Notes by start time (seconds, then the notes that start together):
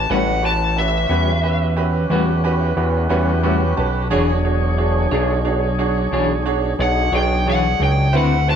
Already playing: A5
0.10 A1 A2 G3 C#4 F#4 G4 B4 F#5
0.42 C#4 F#4 G4 B4 A5
0.76 C#4 F#4 G4 B4 E5
1.09 E2 G3 C#4 F#4 G4 B4
1.43 C#4 F#4 G4 B4
1.77 C#4 F#4 G4 B4
2.10 E2 A2 G3 C#4 F#4 G4 B4
2.44 C#4 F#4 G4 B4
2.77 E2 C#4 F#4 G4 B4
3.09 E2 G3 C#4 F#4 G4 B4
3.43 A2 G3 C#4 F#4 G4 B4 E5
3.77 B1 C#4 F#4 G4 B4 A5
4.10 E1 E3 F#3 D4 F#4 G#4 C#5
4.44 D4 F#4 G#4 C#5
4.78 D4 F#4 G#4 C#5
5.11 B1 D4 F#4 G#4 C#5
5.45 D4 F#4 G#4 C#5
5.79 D4 F#4 G#4 C#5
6.12 B1 E3 D4 F#4 G#4 C#5
6.46 D4 F#4 G#4 C#5
6.79 B1 D4 F#4 G#4 C#5 F#5
7.12 B1 D4 F#4 G#4 C#5 G5
7.46 E3 D4 F#4 G#4 C#5 F#5
7.80 C#2 D4 F#4 G#4 C#5 G5
8.13 D2 D3 C4 E4 F#4 B4 C5
8.17 F#5
8.47 E4 F#4 B4 C5 A5